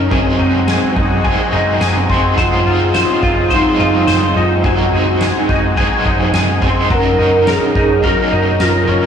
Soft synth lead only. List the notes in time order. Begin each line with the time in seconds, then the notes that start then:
Already playing: C#4
0.12 C4
2.41 F4
3.53 D#4
4.37 F4
4.66 F#4
6.94 A#4
7.49 G#4
8.05 F#4
8.62 F4